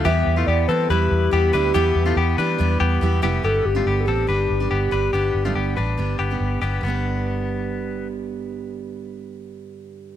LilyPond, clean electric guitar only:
\new Staff \with { instrumentName = "Clean electric guitar" } { \time 4/4 \key g \major \tempo 4 = 141 <b g'>8. <a f'>16 <b g'>8 <c' a'>8 <e' b'>4 <b g'>8 <d' b'>8 | <b g'>8. <a f'>16 <b g'>8 <d' b'>4 <b g'>4 <b g'>8 | <b g'>8. <a f'>16 <b g'>8 <c' a'>8 <d' b'>4 <b g'>8 <d' b'>8 | <b g'>8. <a f'>16 <b g'>8 <d' b'>4 <b g'>4 <b g'>8 |
b2. r4 | r1 | }